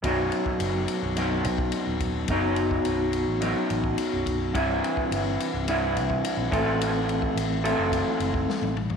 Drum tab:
RD |x-x-x-x-x-x-x-x-|x-x-x-x-x-x-x-x-|x-x-x-x-x-x-x-x-|x-x-x-x-x-x-----|
SD |----------------|----------------|----------------|------------o---|
T1 |----------------|----------------|----------------|-------------o--|
T2 |----------------|----------------|----------------|--------------o-|
FT |----------------|----------------|----------------|---------------o|
BD |o--o-------o--o-|o--o-------o--o-|o--o-------o--o-|---o----o--o----|